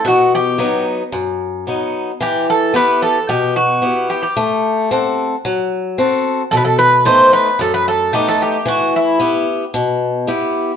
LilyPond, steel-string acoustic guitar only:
\new Staff \with { instrumentName = "Steel-string acoustic guitar" } { \time 4/4 \key e \minor \tempo 4 = 111 b,4 <fis b dis'>4 fis,4 <fis b dis'>4 | e4 <b e' g'>4 b,4 <b e' g'>4 | a4 <c' a' fis''>4 fis4 <c' fis' a'>4 | b,4 <a b dis'>4 fis,4 <a b dis'>4 |
e4 <b e' g'>4 b,4 <b e' g'>4 | }